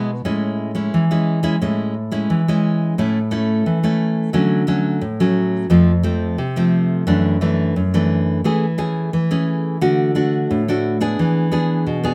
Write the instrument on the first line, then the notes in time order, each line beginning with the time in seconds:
nylon-string guitar
Already playing: B2 B3 E4
0.25 A2 G#3 C#4 E4
0.75 G#3 C#4 E4
0.94 E3
1.11 G#3 C#4 E4
1.43 G#3 C#4 E4
1.61 A2 G#3 C#4 E4
2.12 G#3 C#4 E4
2.30 E3
2.48 G#3 C#4 E4
2.98 A2 A3 C#4 E4
3.31 A3 C#4 E4
3.66 E3
3.83 A3 C#4 E4
4.33 D3 F#3 A3 C#4
4.67 F#3 A3 C#4
5.01 A2
5.20 F#3 A3 C#4
5.70 F2 F3 A3 C4
6.03 F3 A3 C4
6.38 C3
6.56 F3 A3 C4
7.07 F#2 E3 A3 D4
7.41 E3 A3 D4
7.76 F#2
7.94 E3 A3 D4
8.44 E3 A3 C#4 G#4
8.78 A3 C#4 G#4
9.13 E3
9.31 A3 C#4 G#4
9.81 D3 A3 D4 F#4
10.15 A3 D4 F#4
10.50 A2
10.68 A3 D4 F#4
11.01 B3 D4 G#4
11.19 E3
11.51 B3 D4 G#4
11.87 B2
12.04 B3 D4 G#4